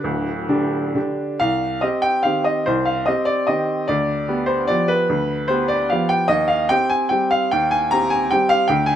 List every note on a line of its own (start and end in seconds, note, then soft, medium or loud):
0.00 0.47 D1 medium
0.00 1.19 B4 medium
0.04 0.47 D2 medium
0.49 0.91 D3 soft
0.49 0.91 D4 medium
0.49 0.92 G4 medium
0.95 1.37 D3 soft
0.95 1.37 D4 soft
0.95 1.37 G4 soft
1.40 1.81 C2 medium
1.40 1.82 F5 medium
1.81 2.21 C4 soft
1.81 2.21 G4 medium
1.81 2.03 D#5 medium
2.02 2.24 G5 medium
2.23 2.63 D#3 soft
2.23 2.63 C4 soft
2.23 2.63 G4 soft
2.23 2.45 F5 medium
2.44 2.66 D#5 medium
2.66 3.05 C2 medium
2.66 2.86 C5 medium
2.85 3.06 F5 medium
3.06 3.44 C4 medium
3.06 3.44 G4 soft
3.06 3.26 D#5 medium
3.25 3.47 D5 medium
3.47 3.85 D#3 soft
3.47 3.85 C4 soft
3.47 3.85 G4 soft
3.47 3.88 D#5 medium
3.88 4.27 D2 medium
3.88 4.48 D5 medium
4.28 4.65 B3 medium
4.28 4.65 G4 medium
4.46 4.68 C5 medium
4.67 5.06 F3 soft
4.67 5.06 B3 soft
4.67 5.06 G4 soft
4.67 4.89 D5 medium
4.88 5.49 B4 medium
5.09 5.48 D2 medium
5.48 5.86 B3 soft
5.48 5.86 G4 medium
5.48 5.69 C5 medium
5.68 5.89 D5 medium
5.90 6.27 F3 soft
5.90 6.27 B3 soft
5.90 6.27 G4 soft
5.90 6.10 F5 medium
6.09 6.29 G5 medium
6.28 6.68 D#2 medium
6.28 6.49 D#5 medium
6.48 6.69 F5 medium
6.69 7.07 C4 medium
6.69 7.08 G4 medium
6.69 6.90 G5 loud
6.90 7.11 G#5 medium
7.09 7.48 G3 soft
7.09 7.48 C4 soft
7.09 7.48 G4 soft
7.09 7.31 G5 medium
7.31 7.51 F5 medium
7.51 7.91 D#2 medium
7.51 7.71 G5 medium
7.71 7.91 G#5 medium
7.91 8.27 C4 soft
7.91 8.27 G4 medium
7.91 8.11 A#5 loud
8.10 8.30 G#5 medium
8.31 8.65 G3 soft
8.31 8.65 C4 soft
8.31 8.66 G4 soft
8.31 8.50 G5 medium
8.49 8.68 F5 medium
8.68 8.96 D2 medium
8.68 8.86 G5 medium
8.86 8.96 G#5 medium